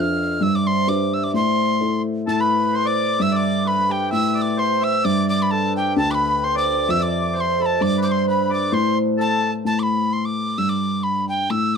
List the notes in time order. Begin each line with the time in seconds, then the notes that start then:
Already playing: F2 D4 F4 A4 C5 D5 F5
0.00 F6
0.41 G2 E5 E6
0.55 D5 D6
0.66 C5 C6
0.87 D4 G4 B4 D5 D6
1.13 E5 E6
1.24 D5 D6
1.34 A2 C5 C6
1.80 E4 A4 C5
2.27 A2 A4 A5
2.40 B4 B5
2.72 C5 C6
2.85 D5 D6
3.18 G2 E5 E6
3.31 D5 E6
3.36 D6
3.65 B4 B5
3.72 B4
3.78 B4
3.89 G4 G5
4.11 A2 E5 E6
4.35 D5 E6
4.42 D6
4.57 C5 C6
4.81 E5 E6
5.03 G2 D5 D6
5.29 D5 D6
5.42 B4 B5
5.51 A4 A5
5.77 G4 G5
5.96 D2 A4 A5
6.10 B4 D6
6.14 B5
6.43 C5 C6
6.55 D5 D6
6.65 D5
6.73 D5
6.88 F2 E5 E6
7.00 D5 D6
7.33 C5 D6
7.40 C6
7.59 A4 B5
7.66 A5
7.80 G2 D5 D6
7.98 B4
8.03 C5 D6
8.08 C6 D6
8.27 B4 B5
8.50 D5 D6
8.71 A2 C5 C6
9.17 A4 A5
9.65 A2 A5
9.79 B5 D6
10.13 C6
10.25 D6
10.58 G2 E6
10.69 D6
11.03 B5
11.29 G5
11.50 A2 E6